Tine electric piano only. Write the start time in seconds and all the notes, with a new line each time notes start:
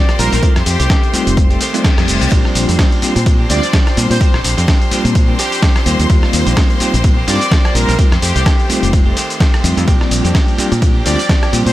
0.18 G3 A#3 C4 D#4 F4
0.42 G3 A3 C4 D#4 F4
1.13 G3 A3 C4 D#4 F4
1.50 G3 A3 C4 D#4 A4
1.74 G3 A3 C4 D#4 F4
1.97 G3 A3 C4 D#4 G4
2.31 G3 A#3 C4 D4 F4
3.02 G3 A#3 C4 D4 F4
3.26 G3 A#3 C4 D4 F4
3.49 G3 A#3 C4 D4 F4
3.96 G3 A#3 C4 D4 F4
4.20 G3 A#3 C4 D4 F4
4.91 G3 A#3 C4 D4 F4
5.28 G3 A#3 C4 D4 A#4
5.86 G3 A#3 C4 D#4 F4
6.09 G3 A#3 C4 D#4 F4
6.80 G3 A#3 C4 D#4 F4
7.04 G3 A#3 C4 D#4 F4
7.27 G3 A#3 C4 D#4 F4
7.75 G3 A#3 C4 D#4 F4
7.98 G3 A3 C4 D#4 F4
8.69 G3 A3 C4 D#4 F4
9.06 G3 A3 C4 D#4 A4
9.64 G3 A3 C4 D#4 F4
9.87 G3 A#3 C4 D4 F4
10.58 G3 A#3 C4 D4 F4
10.81 G3 A#3 C4 D4 F4
11.05 G3 A#3 C4 D4 F4
11.52 G3 A#3 C4 D4 F4